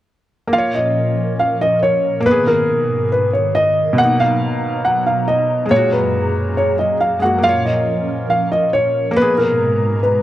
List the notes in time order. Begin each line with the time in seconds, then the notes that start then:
0.47 A#3
0.53 A#2 F3 C#4 F4 A#4 F5
0.58 C#5
0.75 D#5
1.39 F5
1.61 D#5
1.83 C#5
2.20 A#3
2.26 G#2 B2 D#3 B3 B4
2.31 G#4
2.47 A#4
3.12 B4
3.33 C#5
3.55 D#5
3.93 B2
3.98 B2 F#3 A#3 D#4 F#5 A#5
4.04 D#4
4.20 F5
4.85 F#5
5.06 F5
5.28 D#5
5.66 G#3
5.71 F#2 A#2 G#4 C#5
5.76 F#4
5.93 B4
6.57 C#5
6.79 D#5
7.00 F5
7.19 G#3 A#3 F#5
7.25 F#4
7.38 A#3
7.43 A#2 F3 C#4 F4 A#4 F5
7.49 C#5
7.65 D#5
8.30 F5
8.52 D#5
8.73 C#5
9.11 A#3
9.16 G#2 B2 G#3 B3 B4 A#5
9.22 G#4
9.38 A#4
10.03 B4